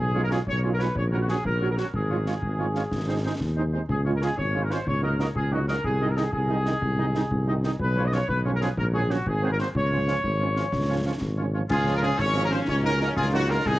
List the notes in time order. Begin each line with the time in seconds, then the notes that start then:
0.00 B1 G#4
0.15 G#3 C#4 F4 C#5
0.24 A#4
0.30 G#3 C#4 F4 G#4 C#5, snare
0.47 B1 C#5, concert bass drum
0.63 G#3 C#4 F4 C#5
0.73 A#4
0.79 G#3 C#4 F4 B4 C#5, snare
0.96 A#1 C#5, concert bass drum
1.12 F#3 C#4 F#4 A#4 C#5
1.21 F#4
1.29 F#3 C#4 F#4 G#4 C#5, snare
1.45 A#1 A#4, concert bass drum
1.61 F#3 C#4 F#4 C#5
1.70 A#4
1.78 F#3 C#4 F#4 C#5, snare
1.94 G#1 G#4, concert bass drum
2.11 G#3 C#4 F4 C#5
2.26 G#3 C#4 F4 C#5, snare
2.42 G#1, concert bass drum
2.59 G#3 C#4 F4 C#5
2.75 G#3 C#4 F4 C#5, snare
2.92 G#1, concert bass drum, snare
3.08 G#3 C4 D#4 C5
3.24 G#3 C4 D#4 C5
3.40 D#2, concert bass drum, snare
3.57 G#3 C4 D#4 C5
3.73 G#3 C4 D#4 C5
3.89 C#2 G#4, concert bass drum
4.05 G#3 C#4 F4 C#5
4.15 A#4
4.21 G#3 C#4 F4 G#4 C#5, snare
4.38 G#1 C#5, concert bass drum
4.54 G#3 C#4 F4 C#5
4.63 A#4
4.71 G#3 C#4 F4 C5 C#5, snare
4.87 C#2 C#5, concert bass drum
5.03 F#3 A#3 D#4 F#4 A#4 D#5
5.19 F#3 A#3 D#4 F#4 A#4 D#5, snare
5.35 C#2 G#4, concert bass drum
5.52 F#3 A#3 D#4 F#4 D#5
5.68 F#3 A#3 D#4 F#4 A#4 D#5, snare
5.84 C2 G#4, concert bass drum
6.01 D#3 G#3 D#4 D#5
6.10 A#4
6.17 D#3 G#3 D#4 G#4 D#5, snare
6.33 C2 G#4, concert bass drum
6.49 D#3 G#3 D#4 D#5
6.66 D#3 G#3 D#4 D#5, snare
6.82 C2, concert bass drum
6.98 D#3 G#3 D#4 D#5
7.15 D#3 G#3 D#4 D#5, snare
7.31 C2, concert bass drum
7.48 D#3 G#3 D#4 D#5
7.63 D#3 G#3 D#4 D#5, snare
7.80 B1 B4, concert bass drum
7.96 F3 G#3 C#4 F4 C#5
8.05 D#5
8.12 F3 G#3 C#4 F4 C#5, snare
8.28 B1 B4, concert bass drum
8.45 F3 G#3 C#4 F4 C#5
8.54 A#4
8.61 F3 G#3 C#4 F4 G#4 C#5, snare
8.77 A#1 A#4, concert bass drum
8.94 F#3 A#3 C#4 F#4 G#4 C#5
9.10 F#3 A#3 C#4 F#4 C#5, snare
9.26 G#1 G#4, concert bass drum
9.42 F#3 A#3 C4 F#4 C5
9.52 A#4
9.58 F#3 A#3 C4 F#4 C5, snare
9.75 C#2 C#5, concert bass drum
9.91 F3 G#3 C#4 F4 C#5
10.07 F3 G#3 C#4 F4 C#5, snare
10.24 G#1, concert bass drum
10.40 F3 G#3 C#4 F4 C#5
10.56 F3 G#3 C#4 F4 C#5, snare
10.72 C#2, concert bass drum, snare
10.89 F3 G#3 C#4 F4 C#5
11.05 F3 G#3 C#4 F4 C#5
11.21 G#1, concert bass drum, snare
11.38 F3 G#3 C#4 F4 C#5
11.54 F3 G#3 C#4 F4 C#5
11.70 C#2 F3 C#4 F4 G#4 G#5, concert bass drum, snare, crash
11.86 F3 G#3 C#4, snare
11.94 A#4 A#5
12.02 F3 G#3 C#4 G#4 G#5, snare
12.19 G#1 C#4 C#5 C#6, concert bass drum, snare
12.35 F3 G#3 C#4, snare
12.44 A#4 A#5
12.51 F3 G#3 C#4 C5 C6, snare
12.68 C#2 F#3 D#4 C#5 C#6, concert bass drum, snare
12.84 F#3 A#3 D#4 A#4 A#5
13.00 F#3 A#3 D#4 A#4 A#5, snare
13.17 C#2 F4 G#4 G#5, concert bass drum, snare
13.33 F#3 A#3 D#4 F#4 F#5
13.49 F#3 A#3 D#4 A#4 A#5
13.65 C2 D#3 D#4 G#4 G#5, concert bass drum, snare, crash